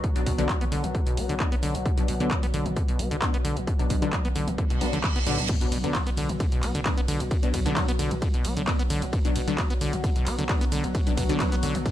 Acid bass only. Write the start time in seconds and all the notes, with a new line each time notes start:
0.04 B2
0.16 B2
0.26 B2
0.38 D3
0.49 F#3
0.61 B3
0.72 D3
0.84 B2
0.95 D3
1.07 B2
1.17 B3
1.29 D3
1.40 D3
1.52 B3
1.63 D3
1.75 B2
1.86 B2
1.98 B2
2.08 B2
2.20 D3
2.31 F#3
2.43 B3
2.54 D3
2.66 B2
2.76 D3
2.88 B2
2.99 B3
3.11 D3
3.22 D3
3.34 B3
3.45 D3
3.57 B2
3.67 B2
3.79 B2
3.90 B2
4.02 D3
4.13 F#3
4.25 B3
4.36 D3
4.48 B2
4.58 D3
4.70 B2
4.81 B3
4.93 D3
5.04 D3
5.16 B3
5.26 D3
5.38 B2
5.49 B2
5.61 B2
5.72 B2
5.84 D3
5.95 F#3
6.07 B3
6.17 D3
6.29 B2
6.40 D3
6.52 B2
6.63 B3
6.75 D3
6.86 D3
6.98 B3
7.08 D3
7.20 B2
7.31 B2
7.43 B2
7.54 B2
7.66 D3
7.76 F#3
7.88 B3
7.99 D3
8.11 B2
8.22 D3
8.34 B2
8.45 B3
8.57 D3
8.67 D3
8.79 B3
8.90 D3
9.02 B2
9.13 B2
9.25 B2
9.36 B2
9.48 D3
9.58 F#3
9.70 B3
9.81 D3
9.93 B2
10.04 D3
10.16 B2
10.27 B3
10.38 D3
10.49 D3
10.61 B3
10.72 D3
10.84 B2
10.95 B2
11.07 B2
11.17 B2
11.29 D3
11.40 F#3
11.52 B3
11.63 D3
11.75 B2
11.86 D3